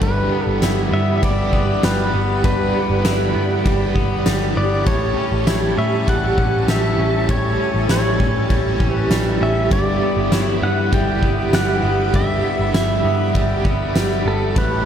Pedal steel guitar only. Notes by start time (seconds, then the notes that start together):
0.03 B4
0.46 A4
0.94 E5
1.17 E5
1.24 D5
1.85 B4
2.45 B4
4.57 D5
4.87 C#5
5.79 E5
6.09 F#5
6.70 E5
7.31 C#5
7.91 C#5
8.95 B4
9.43 E5
9.72 D5
10.35 C#5
10.63 F#5
10.94 G5
11.55 F#5
12.16 E5
12.76 E5
14.28 A4
14.58 B4